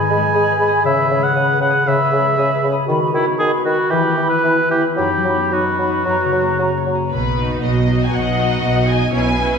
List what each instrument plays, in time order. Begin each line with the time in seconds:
Already playing: harp G#2 G#3 G#4 B4, oboe G#5
0.00 harp D#3
0.06 flute section B5
0.11 bassoon G#3, clarinet G#4
0.17 harp G#3
0.32 bassoon G#3, harp G#4, clarinet G#4, flute section B5
0.51 harp B4
0.58 bassoon G#3, clarinet G#4, flute section B5
0.68 harp G#4
0.82 harp C#3, bassoon C#3, clarinet G#4, oboe E5, flute section B5
1.02 harp C#4
1.08 bassoon C#3, clarinet G#4, flute section B5
1.18 harp G#3
1.23 oboe F#5
1.33 bassoon C#3, clarinet G#4, harp G#4, flute section B5
1.53 harp B4
1.60 bassoon C#3, clarinet G#4, oboe F#5, flute section B5
1.70 harp G#4
1.86 harp C#3, bassoon C#3, clarinet G#4, oboe E5, flute section B5
2.04 harp C#4
2.12 bassoon C#3, clarinet G#4, flute section B5
2.21 harp G#3
2.37 bassoon C#3, clarinet G#4, harp G#4, flute section B5
2.55 harp B4
2.62 bassoon C#3, clarinet G#4, flute section B5
2.72 harp G#4
2.86 bassoon D#3, harp D#3, clarinet F#4, flute section B5
3.06 harp D#4
3.13 bassoon D#3, oboe E4, clarinet F#4, flute section B5
3.23 harp B3
3.39 bassoon D#3, harp F#4, clarinet F#4, oboe G#4, flute section B5
3.57 harp B4
3.65 bassoon D#3, clarinet F#4, oboe F#4, flute section B5
3.74 harp F#4
3.90 bassoon E3, harp E3, clarinet E4, oboe G4, flute section B5
4.09 harp B3
4.17 bassoon E3, clarinet E4, flute section B5
4.27 harp E4, oboe B4
4.44 bassoon E3, clarinet E4, harp B4, flute section B5
4.63 harp E4
4.70 bassoon E3, clarinet E4, oboe G4, flute section B5
4.81 harp B4
4.97 harp F#2, bassoon F#3, clarinet D#4, oboe G4, flute section B5
5.17 harp F#3
5.25 bassoon F#3, clarinet D#4, flute section B5
5.34 harp B3
5.52 bassoon F#3, harp D#4, clarinet D#4, oboe F#4, flute section B5
5.71 harp B4
5.79 bassoon F#3, clarinet D#4, flute section B5
5.89 harp D#4
6.05 harp F#2, bassoon F#3, clarinet F#4, flute section A#5
6.25 harp C#3
6.32 bassoon F#3, clarinet F#4, flute section A#5
6.41 harp A#3
6.59 bassoon F#3, harp C#4, clarinet F#4, flute section A#5
6.77 harp C#5
6.86 bassoon F#3, clarinet F#4, flute section A#5
6.95 harp C#4
7.11 double bass section B1, harp B2, cello section B2, violin section B4
7.37 harp B3, viola section D#4 F#4
7.62 double bass section B1, cello section B2, harp B4, violin section D#5
7.87 viola section D#4 F#4, harp D#4
8.03 violin section G#5
8.12 double bass section B1, cello section B2, harp F#3, violin section D#5 F#5
8.36 harp B3, viola section D#4 F#4
8.61 double bass section B1, cello section B2, harp B4
8.86 harp D#4, viola section D#4 F#4, violin section G#5
9.11 double bass section B1, harp B2, cello section B2, viola section C#4 E4, violin section C#5 G#5
9.36 harp G#3, viola section C#4 E4, violin section B4